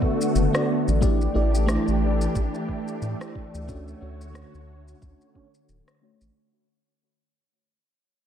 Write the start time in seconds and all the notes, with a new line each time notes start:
Already playing: D3 A3 B3 D4 F#4 A4 D5
0.02 kick
0.21 shaker
0.35 F#1, shaker
0.53 B3 D4 F#4 A4 D5, cross-stick, shaker
0.88 A1, shaker
1.01 E3 A3 D4 E4 G4 D5, kick, shaker
1.21 shaker
1.34 A1 A3 D4 E4 G4 D5
1.55 shaker
1.66 A3 D4 E4 G4, cross-stick, shaker
1.71 D5
1.88 A1, shaker
2.21 shaker
2.35 A1, kick, shaker
2.54 shaker
2.69 kick
2.88 shaker
3.02 A2, shaker
3.20 A3 D4 E4 G4 D5, cross-stick, shaker
3.35 kick
3.54 D2, shaker
3.67 D3 A3 C#4 D4 F#4 C#5, kick, shaker
3.88 shaker
4.01 D2 A3 C#4 D4 F#4 C#5
4.21 shaker
4.33 A3 C#4 D4 F#4, cross-stick, shaker
4.37 C#5
4.54 D2, shaker
4.88 shaker
5.02 D2, kick, shaker
5.21 shaker
5.34 A3 C#4 D4 F#4 C#5, kick
5.54 shaker
5.69 D1, shaker
5.88 cross-stick, shaker
6.01 A3 C#4 D4 F#4 C#5
6.21 A1, shaker